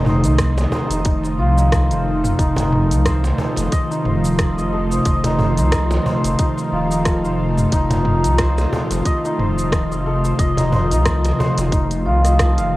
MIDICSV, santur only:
0, 0, Header, 1, 2, 480
1, 0, Start_track
1, 0, Tempo, 666667
1, 1717, Time_signature, 4, 2, 24, 8
1, 9193, End_track
2, 0, Start_track
2, 0, Title_t, "Santur"
2, 0, Program_c, 0, 15
2, 0, Note_on_c, 0, 63, 83
2, 0, Note_on_c, 0, 69, 70
2, 0, Note_on_c, 0, 75, 93
2, 39, Note_on_c, 0, 72, 78
2, 171, Note_off_c, 0, 63, 0
2, 174, Note_on_c, 0, 63, 70
2, 516, Note_off_c, 0, 72, 0
2, 518, Note_on_c, 0, 72, 76
2, 755, Note_off_c, 0, 63, 0
2, 758, Note_on_c, 0, 63, 84
2, 998, Note_on_c, 0, 65, 75
2, 1130, Note_off_c, 0, 63, 0
2, 1133, Note_on_c, 0, 63, 75
2, 1235, Note_off_c, 0, 69, 0
2, 1238, Note_on_c, 0, 69, 73
2, 1370, Note_off_c, 0, 72, 0
2, 1373, Note_on_c, 0, 72, 78
2, 1511, Note_off_c, 0, 75, 0
2, 1715, Note_off_c, 0, 63, 0
2, 1718, Note_on_c, 0, 63, 93
2, 2199, Note_off_c, 0, 72, 0
2, 2202, Note_on_c, 0, 72, 79
2, 2436, Note_off_c, 0, 69, 0
2, 2439, Note_on_c, 0, 69, 75
2, 2678, Note_on_c, 0, 75, 101
2, 2811, Note_off_c, 0, 63, 0
2, 2814, Note_on_c, 0, 63, 77
2, 2917, Note_off_c, 0, 72, 0
2, 2920, Note_on_c, 0, 72, 78
2, 3294, Note_off_c, 0, 75, 0
2, 3297, Note_on_c, 0, 75, 82
2, 3399, Note_off_c, 0, 69, 0
2, 3402, Note_on_c, 0, 69, 74
2, 3420, Note_off_c, 0, 65, 0
2, 3534, Note_off_c, 0, 72, 0
2, 3537, Note_on_c, 0, 72, 77
2, 3638, Note_off_c, 0, 75, 0
2, 3641, Note_on_c, 0, 75, 94
2, 3773, Note_off_c, 0, 63, 0
2, 3776, Note_on_c, 0, 63, 82
2, 3878, Note_off_c, 0, 72, 0
2, 3880, Note_on_c, 0, 72, 78
2, 4015, Note_off_c, 0, 63, 0
2, 4018, Note_on_c, 0, 63, 76
2, 4357, Note_off_c, 0, 72, 0
2, 4360, Note_on_c, 0, 72, 74
2, 4598, Note_off_c, 0, 63, 0
2, 4601, Note_on_c, 0, 63, 87
2, 4842, Note_on_c, 0, 65, 71
2, 4974, Note_off_c, 0, 63, 0
2, 4976, Note_on_c, 0, 63, 74
2, 5078, Note_off_c, 0, 69, 0
2, 5081, Note_on_c, 0, 69, 76
2, 5214, Note_off_c, 0, 72, 0
2, 5217, Note_on_c, 0, 72, 81
2, 5354, Note_off_c, 0, 75, 0
2, 5561, Note_off_c, 0, 63, 0
2, 5564, Note_on_c, 0, 63, 106
2, 6039, Note_off_c, 0, 72, 0
2, 6042, Note_on_c, 0, 72, 81
2, 6279, Note_off_c, 0, 69, 0
2, 6282, Note_on_c, 0, 69, 75
2, 6522, Note_on_c, 0, 75, 101
2, 6656, Note_off_c, 0, 63, 0
2, 6659, Note_on_c, 0, 63, 82
2, 6760, Note_off_c, 0, 72, 0
2, 6763, Note_on_c, 0, 72, 74
2, 7134, Note_off_c, 0, 75, 0
2, 7137, Note_on_c, 0, 75, 76
2, 7241, Note_off_c, 0, 69, 0
2, 7244, Note_on_c, 0, 69, 77
2, 7263, Note_off_c, 0, 65, 0
2, 7374, Note_off_c, 0, 72, 0
2, 7377, Note_on_c, 0, 72, 77
2, 7478, Note_off_c, 0, 75, 0
2, 7481, Note_on_c, 0, 75, 102
2, 7611, Note_off_c, 0, 63, 0
2, 7614, Note_on_c, 0, 63, 84
2, 7715, Note_off_c, 0, 72, 0
2, 7718, Note_on_c, 0, 72, 80
2, 7849, Note_off_c, 0, 63, 0
2, 7852, Note_on_c, 0, 63, 75
2, 8196, Note_off_c, 0, 72, 0
2, 8199, Note_on_c, 0, 72, 77
2, 8435, Note_off_c, 0, 63, 0
2, 8438, Note_on_c, 0, 63, 88
2, 8680, Note_on_c, 0, 65, 79
2, 8811, Note_off_c, 0, 75, 0
2, 8814, Note_on_c, 0, 75, 76
2, 8920, Note_on_c, 0, 81, 71
2, 9057, Note_on_c, 0, 77, 82
2, 9193, Note_off_c, 0, 63, 0
2, 9193, Note_off_c, 0, 65, 0
2, 9193, Note_off_c, 0, 69, 0
2, 9193, Note_off_c, 0, 72, 0
2, 9193, Note_off_c, 0, 75, 0
2, 9193, Note_off_c, 0, 77, 0
2, 9193, Note_off_c, 0, 81, 0
2, 9193, End_track
0, 0, End_of_file